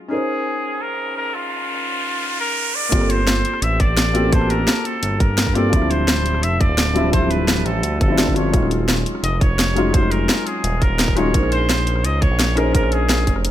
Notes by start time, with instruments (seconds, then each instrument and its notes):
Already playing: felt piano F4
0.08 felt piano C#4 D#4 G#4, muted trumpet G#4, riser
0.13 felt piano A#4 C5
0.82 muted trumpet A#4
1.17 muted trumpet A#4
1.34 muted trumpet F4
2.40 muted trumpet A#4
2.75 muted trumpet D5
2.89 analog synth bass G1, felt piano A#3 C4 F4, kick, closed hi-hat
2.94 felt piano G4 A4
3.01 cross-stick
3.10 muted trumpet C5, closed hi-hat
3.27 snare, closed hi-hat
3.45 closed hi-hat
3.54 cross-stick
3.62 analog synth bass A1, muted trumpet E5, closed hi-hat
3.80 muted trumpet D5, kick, closed hi-hat
3.97 snare, closed hi-hat
4.13 felt piano A#3 C4 F4 G4 A4, closed hi-hat
4.29 felt piano A#3 C4 F4, muted trumpet C5, kick, closed hi-hat
4.34 felt piano G4 A5
4.41 cross-stick
4.50 muted trumpet A#4, closed hi-hat
4.68 snare, closed hi-hat
4.85 muted trumpet A4, closed hi-hat
5.03 analog synth bass G1, closed hi-hat
5.20 muted trumpet A#4, kick, closed hi-hat
5.38 snare, closed hi-hat
5.47 kick, cross-stick
5.54 felt piano A#3 C4 F4 G4 A4, muted trumpet D5, closed hi-hat
5.70 analog synth bass D1, felt piano F3 G3 C4, kick, closed hi-hat
5.74 felt piano D4 E4
5.82 cross-stick
5.91 muted trumpet C5, closed hi-hat
6.08 snare, closed hi-hat
6.26 closed hi-hat
6.35 cross-stick
6.43 analog synth bass F1, muted trumpet E5, closed hi-hat
6.61 muted trumpet D5, kick, closed hi-hat
6.69 analog synth bass D1
6.78 snare, closed hi-hat
6.94 felt piano F3 G3 C4 D4 E4, closed hi-hat
7.10 felt piano F3 G3 C4, muted trumpet C5, kick, closed hi-hat
7.14 felt piano D4 E4
7.22 cross-stick
7.30 muted trumpet B4, closed hi-hat
7.48 snare, closed hi-hat
7.65 analog synth bass A1, muted trumpet A4, closed hi-hat
7.83 analog synth bass D2, closed hi-hat
8.01 analog synth bass G1, muted trumpet A4, kick, closed hi-hat
8.08 felt piano F3 G3 C4 D4 E4
8.17 felt piano F3 G3 C4 D4 E4, snare, closed hi-hat
8.27 kick, cross-stick
8.34 felt piano F3 G3 C4 D4 F4, muted trumpet C#5, closed hi-hat
8.50 analog synth bass D#1, felt piano F#3 G#3 C#4, kick, closed hi-hat
8.55 felt piano D#4 F4
8.63 cross-stick
8.71 closed hi-hat
8.89 snare, closed hi-hat
9.06 closed hi-hat
9.15 cross-stick
9.23 analog synth bass F1, muted trumpet D#5, closed hi-hat
9.41 muted trumpet C#5, kick, closed hi-hat
9.59 snare, closed hi-hat
9.75 felt piano F#3 G#3 C#4 D#4 F4, closed hi-hat
9.91 felt piano F#3 G#3 C#4, muted trumpet C5, kick, closed hi-hat
9.96 felt piano D#4 F4
10.03 cross-stick
10.11 muted trumpet A#4, closed hi-hat
10.29 snare, closed hi-hat
10.47 muted trumpet G#4, closed hi-hat
10.64 analog synth bass D#1, closed hi-hat
10.82 muted trumpet A#4, kick, closed hi-hat
10.99 snare, closed hi-hat
11.08 kick, cross-stick
11.15 felt piano F#3 G#3 C#4 D#4 F4, muted trumpet C#5, closed hi-hat
11.31 analog synth bass A#1, felt piano C#4 D#4 G#4, kick, closed hi-hat
11.35 felt piano A#4 C5
11.43 cross-stick
11.52 muted trumpet C5, closed hi-hat
11.70 snare, closed hi-hat
11.87 closed hi-hat
11.96 cross-stick
12.04 analog synth bass C#2, muted trumpet D#5, closed hi-hat
12.22 muted trumpet C#5, kick, closed hi-hat
12.30 analog synth bass A#1
12.40 snare, closed hi-hat
12.55 felt piano C#4 D#4 G#4 A#4 C5, muted trumpet A#4, closed hi-hat
12.71 felt piano C#4 D#4 G#4, muted trumpet A#4, kick, closed hi-hat
12.76 felt piano A#4 C5
12.83 cross-stick
12.92 muted trumpet G#4, closed hi-hat
13.09 snare, closed hi-hat
13.27 analog synth bass F1, kick, closed hi-hat
13.36 cross-stick
13.45 closed hi-hat